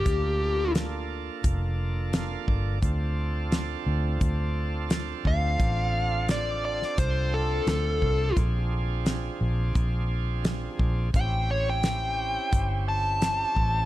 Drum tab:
HH |x---x---x---x---|x---x---x---x---|x---x---x---x---|x---x---x---x---|
SD |----o-------o---|----o-------o---|----o--o----o---|----o-------o---|
BD |o-------o-----o-|o-------o-----o-|o-------o-----o-|o-------o-----o-|

HH |x---x---x---x---|
SD |----o-------o---|
BD |o-------o-----o-|